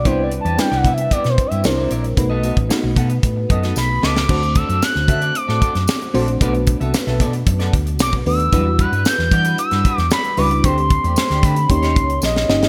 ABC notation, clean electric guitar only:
X:1
M:4/4
L:1/16
Q:1/4=113
K:Dmix
V:1 name="Clean electric guitar"
[B,EGd]2 z [B,EGd] z [B,EGd] [B,EGe] z [B,EGd] z2 [B,EGe] z [CE_Bd] [CEBd] z | z [B,FA^d] [B,FAd] z3 [B,FAf] z3 [B,FAd] [B,FAd] z2 [B,FAd] z | [CFAd] z [CFAd] [CFAd] z2 [CFAe] [CFAd] z [CFAd] [CFAd] z3 [CFAd] z | [B,FAd] z2 [B,FAe] z [B,FAe] [B,FAd] z2 [B,FAd] z6 |
[G,DFB] z [G,DFB] [G,DFB] z2 [G,DFd] [G,DFB] z [G,DFB] [G,DFB] z3 [G,DFB] z | [A,DGc] z2 [A,DGd] z [A,DGd] [A,DGc] z2 [_B,_EG_d] z6 |]